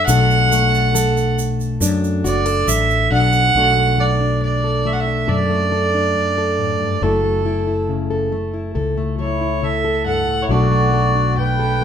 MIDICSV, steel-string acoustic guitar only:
0, 0, Header, 1, 2, 480
1, 0, Start_track
1, 0, Key_signature, 2, "minor"
1, 0, Tempo, 868307
1, 43, Time_signature, 4, 2, 24, 8
1, 6547, End_track
2, 0, Start_track
2, 0, Title_t, "Steel-string acoustic guitar"
2, 0, Program_c, 0, 25
2, 44, Note_on_c, 0, 47, 75
2, 45, Note_on_c, 0, 57, 68
2, 51, Note_on_c, 0, 62, 69
2, 55, Note_on_c, 0, 69, 74
2, 283, Note_off_c, 0, 57, 0
2, 289, Note_on_c, 0, 57, 62
2, 474, Note_off_c, 0, 47, 0
2, 517, Note_off_c, 0, 69, 0
2, 521, Note_on_c, 0, 54, 69
2, 524, Note_on_c, 0, 69, 70
2, 952, Note_off_c, 0, 54, 0
2, 999, Note_off_c, 0, 62, 0
2, 1001, Note_on_c, 0, 42, 69
2, 1006, Note_on_c, 0, 62, 65
2, 1238, Note_off_c, 0, 69, 0
2, 1240, Note_on_c, 0, 66, 67
2, 1358, Note_off_c, 0, 66, 0
2, 1358, Note_on_c, 0, 69, 59
2, 1432, Note_off_c, 0, 42, 0
2, 1481, Note_on_c, 0, 54, 61
2, 1718, Note_off_c, 0, 62, 0
2, 1724, Note_on_c, 0, 62, 61
2, 1912, Note_off_c, 0, 54, 0
2, 1933, Note_off_c, 0, 62, 0
2, 1958, Note_off_c, 0, 69, 0
2, 1959, Note_on_c, 0, 47, 67
2, 1962, Note_off_c, 0, 57, 0
2, 1966, Note_on_c, 0, 54, 56
2, 1969, Note_on_c, 0, 57, 53
2, 1973, Note_on_c, 0, 62, 51
2, 1978, Note_on_c, 0, 69, 57
2, 2082, Note_off_c, 0, 57, 0
2, 2084, Note_on_c, 0, 57, 51
2, 2197, Note_off_c, 0, 54, 0
2, 2200, Note_on_c, 0, 54, 50
2, 2203, Note_off_c, 0, 69, 0
2, 2205, Note_on_c, 0, 69, 57
2, 2317, Note_off_c, 0, 62, 0
2, 2324, Note_on_c, 0, 62, 45
2, 2391, Note_off_c, 0, 47, 0
2, 2441, Note_on_c, 0, 42, 52
2, 2563, Note_off_c, 0, 69, 0
2, 2565, Note_on_c, 0, 69, 53
2, 2631, Note_off_c, 0, 54, 0
2, 2681, Note_on_c, 0, 54, 55
2, 2682, Note_off_c, 0, 57, 0
2, 2684, Note_on_c, 0, 57, 52
2, 2796, Note_off_c, 0, 62, 0
2, 2803, Note_on_c, 0, 62, 51
2, 2872, Note_off_c, 0, 42, 0
2, 2915, Note_on_c, 0, 47, 67
2, 2916, Note_off_c, 0, 69, 0
2, 2918, Note_on_c, 0, 69, 60
2, 3036, Note_off_c, 0, 57, 0
2, 3038, Note_on_c, 0, 57, 53
2, 3112, Note_off_c, 0, 54, 0
2, 3159, Note_on_c, 0, 54, 51
2, 3160, Note_off_c, 0, 69, 0
2, 3163, Note_on_c, 0, 69, 59
2, 3279, Note_off_c, 0, 62, 0
2, 3286, Note_on_c, 0, 62, 51
2, 3349, Note_off_c, 0, 47, 0
2, 3399, Note_on_c, 0, 42, 54
2, 3525, Note_off_c, 0, 69, 0
2, 3527, Note_on_c, 0, 69, 58
2, 3591, Note_off_c, 0, 54, 0
2, 3637, Note_off_c, 0, 42, 0
2, 3639, Note_on_c, 0, 45, 54
2, 3756, Note_off_c, 0, 45, 0
2, 3758, Note_on_c, 0, 43, 57
2, 3854, Note_off_c, 0, 62, 0
2, 3876, Note_off_c, 0, 43, 0
2, 3878, Note_on_c, 0, 42, 68
2, 3885, Note_off_c, 0, 57, 0
2, 3885, Note_on_c, 0, 54, 58
2, 3887, Note_on_c, 0, 57, 55
2, 3890, Note_on_c, 0, 64, 58
2, 4001, Note_off_c, 0, 57, 0
2, 4003, Note_on_c, 0, 57, 54
2, 4116, Note_off_c, 0, 54, 0
2, 4116, Note_off_c, 0, 64, 0
2, 4118, Note_on_c, 0, 54, 55
2, 4123, Note_on_c, 0, 64, 52
2, 4234, Note_off_c, 0, 64, 0
2, 4241, Note_on_c, 0, 64, 47
2, 4311, Note_off_c, 0, 42, 0
2, 4360, Note_on_c, 0, 49, 53
2, 4478, Note_off_c, 0, 69, 0
2, 4480, Note_on_c, 0, 69, 55
2, 4551, Note_off_c, 0, 54, 0
2, 4599, Note_off_c, 0, 57, 0
2, 4599, Note_on_c, 0, 54, 59
2, 4600, Note_off_c, 0, 49, 0
2, 4602, Note_on_c, 0, 57, 50
2, 4712, Note_off_c, 0, 64, 0
2, 4719, Note_on_c, 0, 64, 52
2, 4834, Note_on_c, 0, 42, 64
2, 4836, Note_off_c, 0, 69, 0
2, 4838, Note_on_c, 0, 69, 60
2, 4959, Note_off_c, 0, 57, 0
2, 4961, Note_on_c, 0, 57, 53
2, 5032, Note_off_c, 0, 54, 0
2, 5077, Note_on_c, 0, 54, 54
2, 5078, Note_off_c, 0, 69, 0
2, 5080, Note_on_c, 0, 69, 58
2, 5196, Note_off_c, 0, 64, 0
2, 5203, Note_on_c, 0, 64, 53
2, 5269, Note_off_c, 0, 42, 0
2, 5321, Note_on_c, 0, 49, 55
2, 5440, Note_off_c, 0, 69, 0
2, 5443, Note_on_c, 0, 69, 58
2, 5511, Note_off_c, 0, 54, 0
2, 5555, Note_on_c, 0, 43, 56
2, 5677, Note_off_c, 0, 43, 0
2, 5680, Note_on_c, 0, 45, 58
2, 5753, Note_off_c, 0, 49, 0
2, 5773, Note_off_c, 0, 64, 0
2, 5800, Note_off_c, 0, 45, 0
2, 5800, Note_on_c, 0, 47, 67
2, 5803, Note_on_c, 0, 54, 58
2, 5806, Note_off_c, 0, 57, 0
2, 5808, Note_on_c, 0, 57, 55
2, 5813, Note_on_c, 0, 62, 56
2, 5814, Note_off_c, 0, 69, 0
2, 5816, Note_on_c, 0, 69, 63
2, 5921, Note_off_c, 0, 57, 0
2, 5923, Note_on_c, 0, 57, 54
2, 6041, Note_off_c, 0, 54, 0
2, 6043, Note_on_c, 0, 54, 56
2, 6044, Note_off_c, 0, 69, 0
2, 6046, Note_on_c, 0, 69, 58
2, 6161, Note_off_c, 0, 62, 0
2, 6163, Note_on_c, 0, 62, 49
2, 6233, Note_off_c, 0, 47, 0
2, 6282, Note_on_c, 0, 42, 57
2, 6408, Note_off_c, 0, 69, 0
2, 6410, Note_on_c, 0, 69, 54
2, 6474, Note_off_c, 0, 54, 0
2, 6528, Note_off_c, 0, 57, 0
2, 6528, Note_on_c, 0, 54, 58
2, 6547, Note_off_c, 0, 42, 0
2, 6547, Note_off_c, 0, 54, 0
2, 6547, Note_off_c, 0, 62, 0
2, 6547, Note_off_c, 0, 69, 0
2, 6547, End_track
0, 0, End_of_file